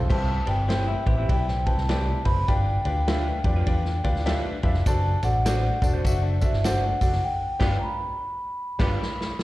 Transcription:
0.09 fingered electric bass C2, grand piano C4 E4 G4 B4 C5, vibraphone A5, kick, crash
0.46 fingered electric bass G1, grand piano C4 E4 G4 B4 D5, vibraphone G5, ride
0.68 grand piano C4 E4 G4 B4 C5, clean electric guitar E4 G4 B4, snare, ride
0.88 clean electric guitar E4
1.06 fingered electric bass A1, grand piano C4 E4 G4 B4 C5, clean electric guitar G4, vibraphone E5, kick, ride
1.17 clean electric guitar E4 G4 B4
1.28 fingered electric bass B1, grand piano C4 E4 G4 B4 D5, vibraphone G5, kick, ride
1.48 clean electric guitar C4, snare
1.66 grand piano C4 E4 G4 B4 C5, vibraphone A5, kick, ride
1.77 fingered electric bass C2, snare
1.89 grand piano C4 E4 G4 B4 D5, clean electric guitar E4 G4 B4, snare, ride
2.25 fingered electric bass F#1, grand piano C4 E4 G4 B4 C5, vibraphone B5, kick, open hi-hat, ride
2.48 fingered electric bass G1, grand piano D4 F4 G4 B4 D5, vibraphone G5, kick, hi-hat pedal, ride
2.85 fingered electric bass D2, grand piano D4 F4 G4 B4 D5, ride
3.07 clean electric guitar D4 F4 B4, grand piano D4 F4 G4 B4 E5, snare, ride
3.44 fingered electric bass F2, grand piano D4 F4 G4 B4 D5, kick, ride
3.56 clean electric guitar D4 F4 B4
3.66 fingered electric bass E2, grand piano D4 F4 G4 B4 D5, kick, ride
3.85 snare
4.04 fingered electric bass D2, grand piano D4 F4 G4 B4 D5 F5, kick, ride
4.16 snare
4.26 grand piano D4 F4 G4 B4 E5 G5, clean electric guitar D4 F4 B4, snare, ride
4.63 fingered electric bass F2, grand piano D4 F4 G4 B4 E5 A5, kick, ride
4.74 fingered electric bass F1, snare
4.86 fingered electric bass F#1, grand piano D4 F#4 A4 C5 D5, vibraphone A5, kick, ride, tambourine
5.23 fingered electric bass A1, grand piano D4 F#4 A4 C5 D5, vibraphone F#5, ride, tambourine
5.45 clean electric guitar D4 F#4 C5, grand piano D4 F#4 A4 C5 D5, snare, ride, tambourine
5.82 fingered electric bass E1, clean electric guitar D4, grand piano D4 F#4 A4 C5 D5, vibraphone D5, kick, ride, tambourine
5.93 clean electric guitar D4 F#4 C5
6.04 fingered electric bass F#1, grand piano D4 F#4 A4 C5 E5, clean electric guitar F#4, kick, ride, tambourine
6.23 clean electric guitar D4
6.41 grand piano D4 F#4 A4 C5 E5, vibraphone E5, kick, ride, tambourine
6.53 fingered electric bass G1, snare
6.64 clean electric guitar D4 F#4 C5, grand piano D4 F#4 A4 C5 D5, vibraphone F#5, snare, ride, tambourine
7.01 fingered electric bass F#1, grand piano D4 F#4 A4 C5 D5, kick, open hi-hat, ride, tambourine
7.12 snare
7.24 vibraphone G5
7.59 fingered electric bass G1, horn section B3 F4 G4 B4, grand piano D4 F4 G4 B4 D5, clean electric guitar D4 F4 B4, kick, snare, crash
7.79 vibraphone A#5
7.83 vibraphone B5
8.79 fingered electric bass G1, horn section B3 F4 G4 B4, grand piano D4 F4 G4 B4 D5, clean electric guitar D4 F4 B4, kick, snare, crash
9.02 snare
9.21 snare
9.39 snare

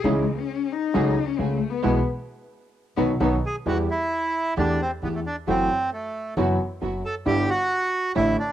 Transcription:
0.04 upright bass C#2, grand piano C#2 C#3 E3 C#4 D#4 G#4, cello G#3, string section C#4 D#4 E4
0.38 cello C#4
0.72 cello D#4
0.94 grand piano C#2 C#3 F#3 A3 C#4 G#4, upright bass C#2, string section A3 F#4 G#4
1.25 cello C#4
1.38 grand piano C#2 C#3, upright bass C#2, string section A3 F#4 G#4, cello A3
1.70 cello B3
1.82 upright bass B1, grand piano B2 E3 G#3, string section G#3 B3 E4, cello B3
2.97 upright bass B1, grand piano B2 D#3 F#3, string section B3 D#4 F#4, cello B3
3.20 upright bass B1, grand piano B2 D#3 F#3, string section B3 D#4 F#4, cello B3
3.46 bandoneon G#4
3.66 upright bass E2, grand piano E2 E3 G3 B3 G4, string section B3 E4 G4, bandoneon F#4
3.91 bandoneon E4
4.57 upright bass E2, grand piano E2 E3 A3 D4 G4, string section A3 D4 G4, bandoneon D4
4.81 bandoneon C4
5.02 upright bass E2, grand piano E2 E3, string section A3 D4 G4, bandoneon B3
5.15 bandoneon A3
5.26 bandoneon D4
5.47 upright bass F#1, grand piano F#2 E3 F#3 A3 C4 F#4, string section A3 E4 F#4, bandoneon C4
5.93 bandoneon A3
6.37 upright bass F#1, grand piano F#2 E3 F#3 B3 F#4, string section B3 E4 F#4
6.81 upright bass F#1, grand piano F#2 F#3, string section B3 E4 F#4
7.05 bandoneon A4
7.26 grand piano G1 G2 D3 G3 B3 E4, upright bass G1, string section G3 D4 E4, bandoneon G4
7.50 bandoneon F#4
8.15 upright bass A1, grand piano A1 A2 D3 E3 A3 E4, string section A3 D4 E4, bandoneon E4
8.39 bandoneon D4

